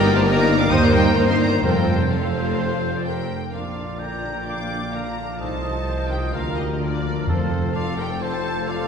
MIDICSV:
0, 0, Header, 1, 13, 480
1, 0, Start_track
1, 0, Key_signature, -2, "major"
1, 0, Tempo, 468019
1, 1684, Time_signature, 4, 2, 24, 8
1, 9103, End_track
2, 0, Start_track
2, 0, Title_t, "Violin section"
2, 0, Program_c, 0, 48
2, 0, Note_on_c, 0, 79, 126
2, 136, Note_off_c, 0, 79, 0
2, 155, Note_on_c, 0, 81, 124
2, 258, Note_on_c, 0, 82, 123
2, 263, Note_off_c, 0, 81, 0
2, 603, Note_off_c, 0, 82, 0
2, 610, Note_on_c, 0, 86, 127
2, 727, Note_off_c, 0, 86, 0
2, 732, Note_on_c, 0, 87, 127
2, 847, Note_off_c, 0, 87, 0
2, 849, Note_on_c, 0, 82, 127
2, 964, Note_on_c, 0, 79, 127
2, 965, Note_off_c, 0, 82, 0
2, 1188, Note_on_c, 0, 82, 110
2, 1197, Note_off_c, 0, 79, 0
2, 1314, Note_off_c, 0, 82, 0
2, 1325, Note_on_c, 0, 84, 109
2, 1441, Note_off_c, 0, 84, 0
2, 1447, Note_on_c, 0, 82, 112
2, 1680, Note_on_c, 0, 79, 104
2, 1682, Note_off_c, 0, 82, 0
2, 2160, Note_off_c, 0, 79, 0
2, 2169, Note_on_c, 0, 77, 83
2, 3136, Note_on_c, 0, 79, 78
2, 3143, Note_off_c, 0, 77, 0
2, 3589, Note_off_c, 0, 79, 0
2, 3624, Note_on_c, 0, 77, 62
2, 4108, Note_off_c, 0, 77, 0
2, 4110, Note_on_c, 0, 82, 67
2, 4580, Note_on_c, 0, 86, 76
2, 4590, Note_off_c, 0, 82, 0
2, 5055, Note_on_c, 0, 82, 73
2, 5056, Note_off_c, 0, 86, 0
2, 5526, Note_on_c, 0, 81, 83
2, 5531, Note_off_c, 0, 82, 0
2, 6240, Note_off_c, 0, 81, 0
2, 6264, Note_on_c, 0, 79, 78
2, 6497, Note_on_c, 0, 77, 90
2, 6505, Note_off_c, 0, 79, 0
2, 6730, Note_on_c, 0, 75, 74
2, 6742, Note_off_c, 0, 77, 0
2, 6812, Note_off_c, 0, 75, 0
2, 6971, Note_on_c, 0, 74, 83
2, 7448, Note_off_c, 0, 74, 0
2, 7454, Note_on_c, 0, 72, 85
2, 7936, Note_on_c, 0, 77, 92
2, 7939, Note_off_c, 0, 72, 0
2, 8176, Note_off_c, 0, 77, 0
2, 8183, Note_on_c, 0, 79, 85
2, 8420, Note_off_c, 0, 79, 0
2, 8435, Note_on_c, 0, 81, 101
2, 8898, Note_off_c, 0, 81, 0
2, 8901, Note_on_c, 0, 77, 93
2, 9103, Note_off_c, 0, 77, 0
2, 9103, End_track
3, 0, Start_track
3, 0, Title_t, "Violin section"
3, 0, Program_c, 1, 48
3, 0, Note_on_c, 1, 70, 103
3, 237, Note_off_c, 1, 70, 0
3, 250, Note_on_c, 1, 70, 107
3, 701, Note_off_c, 1, 70, 0
3, 714, Note_on_c, 1, 70, 99
3, 719, Note_on_c, 1, 72, 96
3, 1185, Note_off_c, 1, 70, 0
3, 1194, Note_off_c, 1, 72, 0
3, 1203, Note_on_c, 1, 70, 92
3, 1206, Note_on_c, 1, 72, 92
3, 1676, Note_off_c, 1, 70, 0
3, 1677, Note_off_c, 1, 72, 0
3, 1687, Note_on_c, 1, 65, 85
3, 1690, Note_on_c, 1, 72, 81
3, 2158, Note_off_c, 1, 65, 0
3, 2159, Note_off_c, 1, 72, 0
3, 2171, Note_on_c, 1, 65, 81
3, 2171, Note_on_c, 1, 72, 80
3, 3124, Note_off_c, 1, 65, 0
3, 3124, Note_off_c, 1, 72, 0
3, 3135, Note_on_c, 1, 79, 68
3, 3589, Note_off_c, 1, 79, 0
3, 3629, Note_on_c, 1, 77, 51
3, 4101, Note_off_c, 1, 77, 0
3, 4105, Note_on_c, 1, 82, 60
3, 4564, Note_on_c, 1, 86, 66
3, 4578, Note_off_c, 1, 82, 0
3, 5047, Note_off_c, 1, 86, 0
3, 5058, Note_on_c, 1, 82, 62
3, 5540, Note_on_c, 1, 81, 72
3, 5542, Note_off_c, 1, 82, 0
3, 6247, Note_off_c, 1, 81, 0
3, 6259, Note_on_c, 1, 79, 64
3, 6498, Note_on_c, 1, 77, 70
3, 6503, Note_off_c, 1, 79, 0
3, 6734, Note_on_c, 1, 75, 61
3, 6742, Note_off_c, 1, 77, 0
3, 6979, Note_on_c, 1, 74, 68
3, 6980, Note_off_c, 1, 75, 0
3, 7462, Note_off_c, 1, 74, 0
3, 7472, Note_on_c, 1, 72, 70
3, 7939, Note_off_c, 1, 72, 0
3, 7946, Note_on_c, 1, 77, 78
3, 8186, Note_off_c, 1, 77, 0
3, 8188, Note_on_c, 1, 79, 76
3, 8420, Note_on_c, 1, 81, 79
3, 8427, Note_off_c, 1, 79, 0
3, 8887, Note_on_c, 1, 77, 86
3, 8900, Note_off_c, 1, 81, 0
3, 9103, Note_off_c, 1, 77, 0
3, 9103, End_track
4, 0, Start_track
4, 0, Title_t, "Oboe"
4, 0, Program_c, 2, 68
4, 3616, Note_on_c, 2, 74, 57
4, 4093, Note_on_c, 2, 79, 74
4, 4108, Note_off_c, 2, 74, 0
4, 5080, Note_on_c, 2, 77, 54
4, 5095, Note_off_c, 2, 79, 0
4, 5537, Note_off_c, 2, 77, 0
4, 5543, Note_on_c, 2, 75, 61
4, 6014, Note_off_c, 2, 75, 0
4, 6030, Note_on_c, 2, 72, 59
4, 6505, Note_on_c, 2, 70, 62
4, 6521, Note_off_c, 2, 72, 0
4, 7465, Note_off_c, 2, 70, 0
4, 7478, Note_on_c, 2, 69, 68
4, 7942, Note_off_c, 2, 69, 0
4, 7954, Note_on_c, 2, 74, 75
4, 8432, Note_on_c, 2, 72, 64
4, 8447, Note_off_c, 2, 74, 0
4, 8907, Note_on_c, 2, 74, 71
4, 8922, Note_off_c, 2, 72, 0
4, 9103, Note_off_c, 2, 74, 0
4, 9103, End_track
5, 0, Start_track
5, 0, Title_t, "Trumpet section"
5, 0, Program_c, 3, 61
5, 0, Note_on_c, 3, 70, 104
5, 217, Note_off_c, 3, 70, 0
5, 242, Note_on_c, 3, 70, 105
5, 710, Note_off_c, 3, 70, 0
5, 716, Note_on_c, 3, 72, 103
5, 1179, Note_off_c, 3, 72, 0
5, 1191, Note_on_c, 3, 72, 93
5, 1662, Note_off_c, 3, 72, 0
5, 1675, Note_on_c, 3, 72, 81
5, 2157, Note_off_c, 3, 72, 0
5, 2169, Note_on_c, 3, 72, 76
5, 3360, Note_off_c, 3, 72, 0
5, 3623, Note_on_c, 3, 74, 51
5, 5505, Note_off_c, 3, 74, 0
5, 5539, Note_on_c, 3, 75, 50
5, 6482, Note_off_c, 3, 75, 0
5, 6494, Note_on_c, 3, 70, 57
5, 7459, Note_off_c, 3, 70, 0
5, 7460, Note_on_c, 3, 69, 61
5, 9103, Note_off_c, 3, 69, 0
5, 9103, End_track
6, 0, Start_track
6, 0, Title_t, "Flute"
6, 0, Program_c, 4, 73
6, 0, Note_on_c, 4, 70, 119
6, 134, Note_off_c, 4, 70, 0
6, 148, Note_on_c, 4, 72, 113
6, 245, Note_on_c, 4, 75, 124
6, 260, Note_off_c, 4, 72, 0
6, 603, Note_off_c, 4, 75, 0
6, 608, Note_on_c, 4, 77, 110
6, 711, Note_on_c, 4, 79, 112
6, 727, Note_off_c, 4, 77, 0
6, 833, Note_off_c, 4, 79, 0
6, 839, Note_on_c, 4, 74, 108
6, 956, Note_on_c, 4, 70, 112
6, 972, Note_off_c, 4, 74, 0
6, 1197, Note_on_c, 4, 75, 101
6, 1212, Note_off_c, 4, 70, 0
6, 1312, Note_off_c, 4, 75, 0
6, 1318, Note_on_c, 4, 75, 95
6, 1373, Note_off_c, 4, 75, 0
6, 1432, Note_on_c, 4, 74, 97
6, 1659, Note_off_c, 4, 74, 0
6, 1665, Note_on_c, 4, 70, 100
6, 2144, Note_on_c, 4, 69, 76
6, 2160, Note_off_c, 4, 70, 0
6, 2858, Note_off_c, 4, 69, 0
6, 3138, Note_on_c, 4, 70, 69
6, 3590, Note_off_c, 4, 70, 0
6, 3625, Note_on_c, 4, 70, 48
6, 4094, Note_on_c, 4, 74, 61
6, 4110, Note_off_c, 4, 70, 0
6, 4579, Note_off_c, 4, 74, 0
6, 4585, Note_on_c, 4, 77, 63
6, 5047, Note_on_c, 4, 74, 59
6, 5062, Note_off_c, 4, 77, 0
6, 5526, Note_off_c, 4, 74, 0
6, 5532, Note_on_c, 4, 72, 63
6, 6236, Note_off_c, 4, 72, 0
6, 6242, Note_on_c, 4, 70, 60
6, 6304, Note_off_c, 4, 70, 0
6, 6479, Note_on_c, 4, 70, 75
6, 6725, Note_on_c, 4, 67, 66
6, 6741, Note_off_c, 4, 70, 0
6, 6967, Note_on_c, 4, 65, 70
6, 6983, Note_off_c, 4, 67, 0
6, 7447, Note_off_c, 4, 65, 0
6, 7454, Note_on_c, 4, 65, 74
6, 7922, Note_on_c, 4, 69, 74
6, 7937, Note_off_c, 4, 65, 0
6, 8174, Note_off_c, 4, 69, 0
6, 8178, Note_on_c, 4, 70, 76
6, 8239, Note_off_c, 4, 70, 0
6, 8423, Note_on_c, 4, 72, 87
6, 8897, Note_on_c, 4, 69, 82
6, 8913, Note_off_c, 4, 72, 0
6, 9103, Note_off_c, 4, 69, 0
6, 9103, End_track
7, 0, Start_track
7, 0, Title_t, "Clarinet"
7, 0, Program_c, 5, 71
7, 0, Note_on_c, 5, 74, 127
7, 712, Note_off_c, 5, 74, 0
7, 735, Note_on_c, 5, 72, 116
7, 1196, Note_off_c, 5, 72, 0
7, 1215, Note_on_c, 5, 70, 89
7, 1682, Note_off_c, 5, 70, 0
7, 1705, Note_on_c, 5, 69, 81
7, 2125, Note_off_c, 5, 69, 0
7, 2186, Note_on_c, 5, 69, 88
7, 2519, Note_off_c, 5, 69, 0
7, 2569, Note_on_c, 5, 70, 77
7, 2673, Note_off_c, 5, 70, 0
7, 2683, Note_on_c, 5, 72, 95
7, 3043, Note_on_c, 5, 74, 75
7, 3058, Note_off_c, 5, 72, 0
7, 3154, Note_off_c, 5, 74, 0
7, 3161, Note_on_c, 5, 67, 65
7, 3495, Note_off_c, 5, 67, 0
7, 3628, Note_on_c, 5, 65, 52
7, 4100, Note_off_c, 5, 65, 0
7, 4118, Note_on_c, 5, 70, 66
7, 4584, Note_off_c, 5, 70, 0
7, 4592, Note_on_c, 5, 74, 65
7, 5076, Note_on_c, 5, 70, 60
7, 5092, Note_off_c, 5, 74, 0
7, 5551, Note_off_c, 5, 70, 0
7, 5558, Note_on_c, 5, 69, 69
7, 6256, Note_off_c, 5, 69, 0
7, 6276, Note_on_c, 5, 67, 65
7, 6381, Note_off_c, 5, 67, 0
7, 6511, Note_on_c, 5, 65, 72
7, 6744, Note_off_c, 5, 65, 0
7, 6757, Note_on_c, 5, 63, 63
7, 6862, Note_off_c, 5, 63, 0
7, 6981, Note_on_c, 5, 62, 58
7, 7454, Note_off_c, 5, 62, 0
7, 7462, Note_on_c, 5, 60, 73
7, 7945, Note_on_c, 5, 65, 84
7, 7960, Note_off_c, 5, 60, 0
7, 8175, Note_off_c, 5, 65, 0
7, 8181, Note_on_c, 5, 67, 69
7, 8290, Note_off_c, 5, 67, 0
7, 8437, Note_on_c, 5, 69, 83
7, 8899, Note_off_c, 5, 69, 0
7, 8916, Note_on_c, 5, 65, 76
7, 9103, Note_off_c, 5, 65, 0
7, 9103, End_track
8, 0, Start_track
8, 0, Title_t, "Viola section"
8, 0, Program_c, 6, 48
8, 0, Note_on_c, 6, 58, 113
8, 0, Note_on_c, 6, 63, 107
8, 242, Note_off_c, 6, 63, 0
8, 244, Note_off_c, 6, 58, 0
8, 254, Note_on_c, 6, 58, 99
8, 255, Note_on_c, 6, 63, 108
8, 707, Note_off_c, 6, 63, 0
8, 712, Note_off_c, 6, 58, 0
8, 720, Note_on_c, 6, 63, 103
8, 724, Note_on_c, 6, 58, 110
8, 1181, Note_off_c, 6, 58, 0
8, 1182, Note_off_c, 6, 63, 0
8, 1193, Note_on_c, 6, 58, 93
8, 1195, Note_on_c, 6, 63, 94
8, 1670, Note_off_c, 6, 58, 0
8, 1671, Note_off_c, 6, 63, 0
8, 1672, Note_on_c, 6, 60, 75
8, 1676, Note_on_c, 6, 57, 81
8, 2146, Note_off_c, 6, 57, 0
8, 2151, Note_off_c, 6, 60, 0
8, 2158, Note_on_c, 6, 57, 77
8, 2164, Note_on_c, 6, 60, 80
8, 3388, Note_off_c, 6, 57, 0
8, 3391, Note_off_c, 6, 60, 0
8, 3609, Note_on_c, 6, 62, 43
8, 3611, Note_on_c, 6, 50, 47
8, 3724, Note_on_c, 6, 53, 41
8, 3724, Note_on_c, 6, 65, 40
8, 3730, Note_off_c, 6, 62, 0
8, 3731, Note_off_c, 6, 50, 0
8, 3844, Note_on_c, 6, 50, 43
8, 3847, Note_on_c, 6, 62, 43
8, 3857, Note_off_c, 6, 53, 0
8, 3857, Note_off_c, 6, 65, 0
8, 3962, Note_on_c, 6, 53, 40
8, 3962, Note_on_c, 6, 65, 42
8, 3977, Note_off_c, 6, 50, 0
8, 3979, Note_off_c, 6, 62, 0
8, 4087, Note_on_c, 6, 50, 42
8, 4090, Note_on_c, 6, 62, 44
8, 4096, Note_off_c, 6, 53, 0
8, 4096, Note_off_c, 6, 65, 0
8, 4207, Note_on_c, 6, 65, 44
8, 4209, Note_off_c, 6, 50, 0
8, 4209, Note_on_c, 6, 53, 44
8, 4211, Note_off_c, 6, 62, 0
8, 4336, Note_on_c, 6, 62, 46
8, 4338, Note_off_c, 6, 65, 0
8, 4340, Note_off_c, 6, 53, 0
8, 4341, Note_on_c, 6, 50, 46
8, 4458, Note_on_c, 6, 65, 42
8, 4461, Note_on_c, 6, 53, 42
8, 4463, Note_off_c, 6, 62, 0
8, 4465, Note_off_c, 6, 50, 0
8, 4577, Note_on_c, 6, 62, 44
8, 4581, Note_on_c, 6, 50, 50
8, 4584, Note_off_c, 6, 65, 0
8, 4585, Note_off_c, 6, 53, 0
8, 4695, Note_off_c, 6, 62, 0
8, 4695, Note_on_c, 6, 53, 43
8, 4697, Note_off_c, 6, 50, 0
8, 4699, Note_on_c, 6, 65, 43
8, 4821, Note_on_c, 6, 50, 40
8, 4823, Note_off_c, 6, 53, 0
8, 4823, Note_on_c, 6, 62, 45
8, 4824, Note_off_c, 6, 65, 0
8, 4935, Note_on_c, 6, 65, 44
8, 4937, Note_on_c, 6, 53, 41
8, 4946, Note_off_c, 6, 50, 0
8, 4947, Note_off_c, 6, 62, 0
8, 5056, Note_on_c, 6, 62, 44
8, 5061, Note_on_c, 6, 50, 45
8, 5063, Note_off_c, 6, 65, 0
8, 5064, Note_off_c, 6, 53, 0
8, 5174, Note_off_c, 6, 62, 0
8, 5177, Note_off_c, 6, 50, 0
8, 5177, Note_on_c, 6, 53, 44
8, 5183, Note_on_c, 6, 65, 42
8, 5302, Note_on_c, 6, 50, 45
8, 5303, Note_off_c, 6, 53, 0
8, 5303, Note_on_c, 6, 62, 47
8, 5306, Note_off_c, 6, 65, 0
8, 5417, Note_on_c, 6, 53, 43
8, 5419, Note_on_c, 6, 65, 43
8, 5425, Note_off_c, 6, 50, 0
8, 5425, Note_off_c, 6, 62, 0
8, 5539, Note_on_c, 6, 63, 49
8, 5542, Note_off_c, 6, 53, 0
8, 5542, Note_on_c, 6, 51, 46
8, 5543, Note_off_c, 6, 65, 0
8, 5649, Note_on_c, 6, 53, 43
8, 5651, Note_on_c, 6, 65, 44
8, 5654, Note_off_c, 6, 63, 0
8, 5656, Note_off_c, 6, 51, 0
8, 5763, Note_on_c, 6, 51, 44
8, 5764, Note_on_c, 6, 63, 48
8, 5778, Note_off_c, 6, 53, 0
8, 5779, Note_off_c, 6, 65, 0
8, 5881, Note_on_c, 6, 53, 44
8, 5883, Note_on_c, 6, 65, 44
8, 5894, Note_off_c, 6, 51, 0
8, 5895, Note_off_c, 6, 63, 0
8, 6008, Note_on_c, 6, 63, 47
8, 6012, Note_on_c, 6, 51, 50
8, 6013, Note_off_c, 6, 53, 0
8, 6014, Note_off_c, 6, 65, 0
8, 6124, Note_on_c, 6, 65, 47
8, 6128, Note_off_c, 6, 63, 0
8, 6130, Note_off_c, 6, 51, 0
8, 6130, Note_on_c, 6, 53, 49
8, 6247, Note_on_c, 6, 51, 47
8, 6248, Note_on_c, 6, 63, 50
8, 6255, Note_off_c, 6, 65, 0
8, 6258, Note_off_c, 6, 53, 0
8, 6371, Note_on_c, 6, 53, 49
8, 6372, Note_on_c, 6, 65, 45
8, 6377, Note_off_c, 6, 51, 0
8, 6377, Note_off_c, 6, 63, 0
8, 6498, Note_off_c, 6, 53, 0
8, 6499, Note_off_c, 6, 65, 0
8, 6502, Note_on_c, 6, 58, 54
8, 6504, Note_on_c, 6, 50, 56
8, 6616, Note_off_c, 6, 58, 0
8, 6617, Note_off_c, 6, 50, 0
8, 6622, Note_on_c, 6, 53, 48
8, 6624, Note_on_c, 6, 62, 49
8, 6740, Note_on_c, 6, 58, 51
8, 6742, Note_on_c, 6, 50, 52
8, 6744, Note_off_c, 6, 53, 0
8, 6745, Note_off_c, 6, 62, 0
8, 6854, Note_on_c, 6, 53, 46
8, 6858, Note_on_c, 6, 62, 50
8, 6863, Note_off_c, 6, 58, 0
8, 6864, Note_off_c, 6, 50, 0
8, 6964, Note_on_c, 6, 50, 53
8, 6965, Note_on_c, 6, 58, 53
8, 6980, Note_off_c, 6, 53, 0
8, 6982, Note_off_c, 6, 62, 0
8, 7085, Note_off_c, 6, 50, 0
8, 7086, Note_off_c, 6, 58, 0
8, 7087, Note_on_c, 6, 53, 49
8, 7089, Note_on_c, 6, 62, 50
8, 7213, Note_on_c, 6, 58, 53
8, 7216, Note_off_c, 6, 53, 0
8, 7216, Note_on_c, 6, 50, 51
8, 7217, Note_off_c, 6, 62, 0
8, 7319, Note_on_c, 6, 62, 47
8, 7326, Note_on_c, 6, 53, 50
8, 7339, Note_off_c, 6, 58, 0
8, 7341, Note_off_c, 6, 50, 0
8, 7434, Note_off_c, 6, 53, 0
8, 7446, Note_on_c, 6, 53, 58
8, 7449, Note_on_c, 6, 60, 57
8, 7452, Note_off_c, 6, 62, 0
8, 7560, Note_on_c, 6, 57, 52
8, 7563, Note_on_c, 6, 65, 51
8, 7567, Note_off_c, 6, 53, 0
8, 7569, Note_off_c, 6, 60, 0
8, 7687, Note_on_c, 6, 60, 53
8, 7690, Note_on_c, 6, 53, 56
8, 7693, Note_off_c, 6, 57, 0
8, 7694, Note_off_c, 6, 65, 0
8, 7809, Note_on_c, 6, 57, 53
8, 7809, Note_on_c, 6, 65, 55
8, 7816, Note_off_c, 6, 60, 0
8, 7818, Note_off_c, 6, 53, 0
8, 7928, Note_on_c, 6, 53, 57
8, 7933, Note_on_c, 6, 60, 58
8, 7937, Note_off_c, 6, 57, 0
8, 7937, Note_off_c, 6, 65, 0
8, 8047, Note_off_c, 6, 53, 0
8, 8050, Note_off_c, 6, 60, 0
8, 8058, Note_on_c, 6, 65, 60
8, 8061, Note_on_c, 6, 57, 54
8, 8182, Note_off_c, 6, 65, 0
8, 8183, Note_off_c, 6, 57, 0
8, 8188, Note_on_c, 6, 60, 55
8, 8191, Note_on_c, 6, 53, 58
8, 8302, Note_on_c, 6, 65, 54
8, 8306, Note_on_c, 6, 57, 53
8, 8307, Note_off_c, 6, 60, 0
8, 8308, Note_off_c, 6, 53, 0
8, 8424, Note_off_c, 6, 65, 0
8, 8425, Note_on_c, 6, 53, 65
8, 8426, Note_off_c, 6, 57, 0
8, 8427, Note_on_c, 6, 60, 60
8, 8537, Note_off_c, 6, 53, 0
8, 8538, Note_off_c, 6, 60, 0
8, 8549, Note_on_c, 6, 65, 60
8, 8551, Note_on_c, 6, 57, 54
8, 8666, Note_off_c, 6, 65, 0
8, 8668, Note_off_c, 6, 57, 0
8, 8672, Note_on_c, 6, 53, 55
8, 8672, Note_on_c, 6, 60, 54
8, 8787, Note_off_c, 6, 53, 0
8, 8787, Note_off_c, 6, 60, 0
8, 8790, Note_on_c, 6, 57, 54
8, 8794, Note_on_c, 6, 65, 57
8, 8905, Note_on_c, 6, 53, 62
8, 8906, Note_off_c, 6, 57, 0
8, 8907, Note_on_c, 6, 60, 60
8, 8908, Note_off_c, 6, 65, 0
8, 9014, Note_on_c, 6, 57, 57
8, 9015, Note_off_c, 6, 53, 0
8, 9016, Note_off_c, 6, 60, 0
8, 9016, Note_on_c, 6, 65, 57
8, 9103, Note_off_c, 6, 57, 0
8, 9103, Note_off_c, 6, 65, 0
8, 9103, End_track
9, 0, Start_track
9, 0, Title_t, "French horn section"
9, 0, Program_c, 7, 60
9, 0, Note_on_c, 7, 51, 109
9, 0, Note_on_c, 7, 67, 111
9, 215, Note_off_c, 7, 67, 0
9, 216, Note_off_c, 7, 51, 0
9, 237, Note_on_c, 7, 51, 103
9, 237, Note_on_c, 7, 67, 109
9, 698, Note_off_c, 7, 51, 0
9, 708, Note_off_c, 7, 67, 0
9, 711, Note_on_c, 7, 51, 97
9, 719, Note_on_c, 7, 70, 99
9, 1175, Note_off_c, 7, 70, 0
9, 1179, Note_off_c, 7, 51, 0
9, 1187, Note_on_c, 7, 70, 95
9, 1192, Note_on_c, 7, 51, 88
9, 1667, Note_off_c, 7, 70, 0
9, 1670, Note_off_c, 7, 51, 0
9, 1671, Note_on_c, 7, 53, 82
9, 1673, Note_on_c, 7, 69, 81
9, 2144, Note_off_c, 7, 69, 0
9, 2152, Note_off_c, 7, 53, 0
9, 2156, Note_on_c, 7, 69, 83
9, 2165, Note_on_c, 7, 53, 81
9, 3354, Note_off_c, 7, 69, 0
9, 3358, Note_off_c, 7, 53, 0
9, 3630, Note_on_c, 7, 65, 52
9, 3638, Note_on_c, 7, 53, 51
9, 7425, Note_off_c, 7, 65, 0
9, 7430, Note_off_c, 7, 53, 0
9, 7469, Note_on_c, 7, 53, 69
9, 7481, Note_on_c, 7, 60, 64
9, 9103, Note_off_c, 7, 53, 0
9, 9103, Note_off_c, 7, 60, 0
9, 9103, End_track
10, 0, Start_track
10, 0, Title_t, "Cello section"
10, 0, Program_c, 8, 48
10, 0, Note_on_c, 8, 55, 127
10, 124, Note_on_c, 8, 57, 109
10, 134, Note_off_c, 8, 55, 0
10, 243, Note_on_c, 8, 58, 127
10, 248, Note_off_c, 8, 57, 0
10, 598, Note_on_c, 8, 62, 106
10, 603, Note_off_c, 8, 58, 0
10, 647, Note_off_c, 8, 62, 0
10, 711, Note_on_c, 8, 63, 107
10, 761, Note_off_c, 8, 63, 0
10, 832, Note_on_c, 8, 58, 105
10, 951, Note_on_c, 8, 55, 108
10, 954, Note_off_c, 8, 58, 0
10, 1183, Note_on_c, 8, 58, 108
10, 1195, Note_off_c, 8, 55, 0
10, 1235, Note_off_c, 8, 58, 0
10, 1305, Note_on_c, 8, 60, 99
10, 1425, Note_on_c, 8, 58, 87
10, 1431, Note_off_c, 8, 60, 0
10, 1671, Note_off_c, 8, 58, 0
10, 1677, Note_on_c, 8, 55, 96
10, 2159, Note_off_c, 8, 55, 0
10, 2168, Note_on_c, 8, 53, 79
10, 3142, Note_off_c, 8, 53, 0
10, 3622, Note_on_c, 8, 46, 54
10, 5504, Note_off_c, 8, 46, 0
10, 5537, Note_on_c, 8, 48, 55
10, 6481, Note_off_c, 8, 48, 0
10, 6500, Note_on_c, 8, 50, 53
10, 7461, Note_on_c, 8, 41, 68
10, 7462, Note_off_c, 8, 50, 0
10, 9103, Note_off_c, 8, 41, 0
10, 9103, End_track
11, 0, Start_track
11, 0, Title_t, "Timpani"
11, 0, Program_c, 10, 47
11, 1670, Note_on_c, 10, 41, 109
11, 2367, Note_off_c, 10, 41, 0
11, 7454, Note_on_c, 10, 41, 76
11, 8139, Note_off_c, 10, 41, 0
11, 9103, End_track
12, 0, Start_track
12, 0, Title_t, "Double bass section"
12, 0, Program_c, 11, 48
12, 0, Note_on_c, 11, 31, 114
12, 724, Note_on_c, 11, 39, 104
12, 727, Note_off_c, 11, 31, 0
12, 1198, Note_on_c, 11, 43, 97
12, 1200, Note_off_c, 11, 39, 0
12, 1673, Note_off_c, 11, 43, 0
12, 1682, Note_on_c, 11, 41, 82
12, 3384, Note_off_c, 11, 41, 0
12, 3627, Note_on_c, 11, 34, 52
12, 5507, Note_off_c, 11, 34, 0
12, 5547, Note_on_c, 11, 36, 60
12, 6486, Note_off_c, 11, 36, 0
12, 6503, Note_on_c, 11, 38, 60
12, 7464, Note_off_c, 11, 38, 0
12, 7469, Note_on_c, 11, 29, 67
12, 9103, Note_off_c, 11, 29, 0
12, 9103, End_track
13, 0, Start_track
13, 0, Title_t, "Tuba"
13, 0, Program_c, 12, 58
13, 0, Note_on_c, 12, 31, 112
13, 713, Note_on_c, 12, 39, 118
13, 728, Note_off_c, 12, 31, 0
13, 1177, Note_off_c, 12, 39, 0
13, 1183, Note_on_c, 12, 31, 88
13, 1665, Note_off_c, 12, 31, 0
13, 1673, Note_on_c, 12, 29, 84
13, 3380, Note_off_c, 12, 29, 0
13, 3614, Note_on_c, 12, 34, 47
13, 5500, Note_off_c, 12, 34, 0
13, 5539, Note_on_c, 12, 36, 53
13, 6493, Note_on_c, 12, 38, 66
13, 6508, Note_off_c, 12, 36, 0
13, 7449, Note_off_c, 12, 38, 0
13, 7455, Note_on_c, 12, 29, 63
13, 9103, Note_off_c, 12, 29, 0
13, 9103, End_track
0, 0, End_of_file